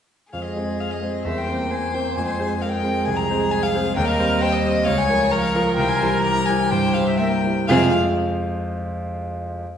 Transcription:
0.33 grand piano F2, cello G#3, violin G#4 F5, viola G#4
0.45 violin D#5
0.56 grand piano G#3 C4 C5
0.80 violin F5
0.91 violin D#5
1.02 grand piano G#3 C4 C5
1.25 grand piano E2, cello G3, violin A#4 E5, viola C5
1.38 violin G5
1.48 grand piano A#3 C4 C5
1.70 cello A#3, violin C5 G#5, viola C5
1.94 grand piano A#3 C4 C5, violin G5
2.16 grand piano F2, cello G#3, violin C5 G#5
2.27 violin G#5
2.39 grand piano G#3 C4 C5
2.62 viola G#4, violin A#4 F5
2.72 violin G5
2.84 grand piano G#3 C4 C5
3.05 grand piano C2, cello F3, violin G#4 G#5
3.16 violin A#5
3.30 grand piano G#3 C4 C5
3.51 violin G#5
3.63 violin F5
3.74 grand piano G#3 C4 C5
3.96 grand piano D#2, cello G3, viola A#4, violin D#5 G5
4.08 violin F5
4.19 grand piano G3 C4 C5
4.41 viola C5, violin G5
4.53 violin D#5
4.64 grand piano G3 C4 C5
4.85 grand piano C#2, cello G3, violin C#5 F5, viola C#5
4.98 violin G#5
5.09 grand piano F3 F4 A#4
5.31 cello F3, viola A#4, violin A#5
5.42 violin F5
5.55 grand piano F3 F4 A#4
5.76 grand piano C2, cello E3, violin C5 G5
5.89 violin G#5
6.01 grand piano G3 E4 C5
6.23 violin G4 A#5
6.46 grand piano G3 E4 C5, violin G#5
6.70 grand piano G2, cello G3, viola C5, violin G5
6.94 grand piano G3 E4 C5, violin F5
7.07 violin E5
7.18 cello A#3, violin A#4 G5, viola E5
7.44 grand piano G3 E4 C5
7.67 grand piano F2 F3 G#3 F4 C5 F5, cello C3, viola C4, violin G#4 F5

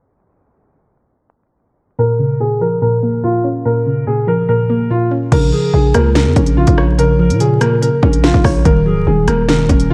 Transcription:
1.99 synth pluck A#2, grand piano A#4
2.19 synth pluck C#3
2.40 synth pluck A#2, grand piano G#4
2.61 synth pluck F3, grand piano A#4
2.82 synth pluck A#2, grand piano A#4
3.03 synth pluck A#3
3.24 synth pluck A#2, grand piano F4
3.44 synth pluck C#4
3.65 synth pluck A#2, grand piano A#4
3.86 synth pluck C#3
4.07 synth pluck A#2, grand piano G#4
4.27 synth pluck F3, grand piano A#4
4.49 synth pluck A#2, grand piano A#4
4.70 synth pluck A#3
4.90 synth pluck A#2, grand piano F4
5.11 synth pluck C#4
5.32 808-style bass A#1, synth pluck C#3, grand piano A#4, kick, closed hi-hat, crash
5.53 synth pluck F3, soft synth lead G#4
5.74 808-style bass A#1, synth pluck C#3, grand piano G#4
5.94 808-style bass C#2, synth pluck A#3, grand piano A#4, cross-stick, closed hi-hat
6.15 synth pluck C#3, grand piano A#4, snare, closed hi-hat
6.26 808-style bass F2
6.36 808-style bass A#1, synth pluck C#4, kick, closed hi-hat
6.46 closed hi-hat
6.57 synth pluck C#3, grand piano F4
6.67 808-style bass A#1, kick, closed hi-hat
6.78 synth pluck C#5, cross-stick
6.98 synth pluck C#3, grand piano A#4, closed hi-hat
7.19 synth pluck F3, soft synth lead A#4
7.30 808-style bass A#2, closed hi-hat
7.40 synth pluck C#3, grand piano G#4, closed hi-hat
7.61 synth pluck A#3, grand piano A#4, cross-stick, closed hi-hat
7.82 synth pluck C#3, grand piano A#4, closed hi-hat
8.03 808-style bass A#1, synth pluck C#4, kick
8.13 closed hi-hat
8.24 synth pluck C#3, grand piano F4, snare
8.34 808-style bass A#1, kick
8.44 808-style bass A#1, synth pluck C#5, kick, cross-stick, open hi-hat
8.65 808-style bass D#1, synth pluck D#3, grand piano A#4, kick, closed hi-hat
8.86 808-style bass C#1, synth pluck F#3, soft synth lead G#4
9.07 808-style bass D#1, synth pluck D#3, grand piano G#4
9.28 808-style bass D#1, synth pluck A#3, grand piano A#4, cross-stick, closed hi-hat
9.49 808-style bass F1, synth pluck D#3, grand piano A#4, snare, closed hi-hat
9.59 808-style bass D#1
9.69 808-style bass D#1, synth pluck C#4, kick, closed hi-hat
9.80 closed hi-hat
9.90 synth pluck D#3, grand piano F4

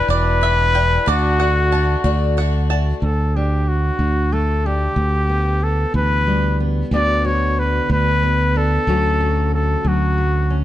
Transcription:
Already playing: trumpet B4, five-string banjo E5 G5
0.08 fingered electric bass E1, twelve-string acoustic guitar E2 B2 E3 G3 D4 E4, trumpet B4, five-string banjo D5
0.41 twelve-string acoustic guitar E3 G3 D4 E4, five-string banjo E5
0.74 twelve-string acoustic guitar E3 G3 D4 E4, five-string banjo G5
1.06 fingered electric bass D2, twelve-string acoustic guitar D3 A3 D4 F#4, trumpet F#4, five-string banjo D5
1.39 twelve-string acoustic guitar A3 D4 F#4, five-string banjo F#5
1.72 twelve-string acoustic guitar D3 A3 D4 F#4, five-string banjo A5
2.04 fingered electric bass D2, twelve-string acoustic guitar D3 A3 D4 F#4
2.37 twelve-string acoustic guitar D3 A3 D4 F#4, five-string banjo F#5
2.70 twelve-string acoustic guitar A3 D4 F#4, five-string banjo A5
3.02 fingered electric bass D2, steel-string acoustic guitar D2, trumpet A4
3.36 steel-string acoustic guitar D4, trumpet G4
3.68 trumpet F#4
3.99 fingered electric bass D2, steel-string acoustic guitar D3
4.32 steel-string acoustic guitar A3, trumpet A4
4.66 steel-string acoustic guitar D4, trumpet G4
4.96 fingered electric bass D2, steel-string acoustic guitar D2
5.29 steel-string acoustic guitar B3
5.64 trumpet A4
5.94 fingered electric bass D2, steel-string acoustic guitar E3, trumpet B4
6.27 steel-string acoustic guitar G3
6.60 steel-string acoustic guitar B3
6.91 steel-string acoustic guitar D2 D3 B3 D4 F#4, fingered electric bass D2, trumpet D5
7.25 steel-string acoustic guitar F#4, trumpet C#5
7.59 trumpet B4
7.90 fingered electric bass D2, steel-string acoustic guitar D3, trumpet B4
8.23 steel-string acoustic guitar B3
8.55 steel-string acoustic guitar D4, trumpet A4
8.87 steel-string acoustic guitar D2 F#3 A3 C#4 F#4, fingered electric bass D2
9.20 steel-string acoustic guitar F#4
9.54 trumpet A4
9.85 fingered electric bass D2, steel-string acoustic guitar F#3, trumpet F#4
10.18 steel-string acoustic guitar A3
10.50 steel-string acoustic guitar C#4

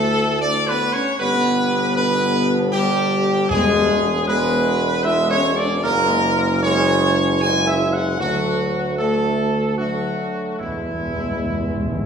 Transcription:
Already playing: tuba D2, trombone section A2 A3, french horn section A3, trumpet section A4
0.42 french horn section D4, trumpet section D5
0.68 french horn section B3, trumpet section B4
0.93 french horn section C#4, trumpet section C#5
1.19 tuba G1, trombone section B2 G3, french horn section B3, trumpet section B4
1.96 french horn section B3, trumpet section B4
2.72 french horn section G3, trumpet section G4
3.49 tuba E1, timpani E2, trombone section B2 G#3, french horn section G#3, trumpet section G#4
4.28 trombone section B2 G#3, french horn section B3, trumpet section B4
5.04 trombone section B2 G#3, french horn section E4, trumpet section E5
5.31 french horn section C#4, trumpet section C#5
5.57 french horn section D4, trumpet section D5
5.84 tuba F#1, trombone section A#2 G#3, french horn section A#3, trumpet section A#4
6.63 trombone section A#2 G#3, french horn section C#4, trumpet section C#5
7.41 trombone section A#2 G#3, french horn section G#4, trumpet section G#5
7.67 french horn section E4, trumpet section E5
7.93 french horn section F#4, trumpet section F#5
8.19 tuba D2, trombone section D3 A3, french horn section F#3, trumpet section F#4
8.98 trombone section D3 A3, french horn section A3, trumpet section A4
9.78 trombone section D3 A3, french horn section F#3, trumpet section F#4
10.59 tuba E2, timpani E2, trombone section B2 G#3, french horn section E3, trumpet section E4
10.68 timpani E2
10.77 timpani E2
10.84 timpani E2
10.92 timpani E2
11.00 timpani E2
11.07 timpani E2
11.15 timpani E2
11.23 timpani E2
11.31 timpani E2
11.39 timpani E2
11.46 timpani E2
11.54 timpani E2
11.61 timpani E2
11.69 timpani E2
11.77 timpani E2
11.85 timpani E2
11.93 timpani E2
12.00 timpani E2

